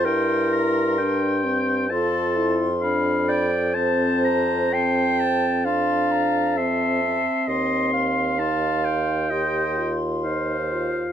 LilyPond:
<<
  \new Staff \with { instrumentName = "Flute" } { \time 4/4 \key f \lydian \tempo 4 = 65 c'''2 c'''4 b''8 r8 | \key f \major a''4 a''4 c'''8 bes''8 a''4 | c'''4 c'''4 c'''4. r8 | }
  \new Staff \with { instrumentName = "Oboe" } { \time 4/4 \key f \lydian g''8 bes''8 g''4 a''8 r8 f''8 g''8 | \key f \major a''8 bes''8 c'''8 a''8 a''4 c'''4 | c'''4 a''8 g''4 r8 f''4 | }
  \new Staff \with { instrumentName = "Clarinet" } { \time 4/4 \key f \lydian bes'4. r8 a'4 r8 d''8 | \key f \major c''4 g''4 f''4 e''4 | ees''8 f''4. ees''8 r8 c''4 | }
  \new Staff \with { instrumentName = "French horn" } { \time 4/4 \key f \lydian e'4 d'8 c'8 f'8 e'8 d'8 r8 | \key f \major c'4 c'4 d'4 c'8 c'8~ | c'4 ees'4 g'8 f'8 ees'8 f'8 | }
  \new Staff \with { instrumentName = "Bassoon" } { \clef bass \time 4/4 \key f \lydian g,2 f,2~ | \key f \major f,2.~ f,8 r8 | ees,1 | }
>>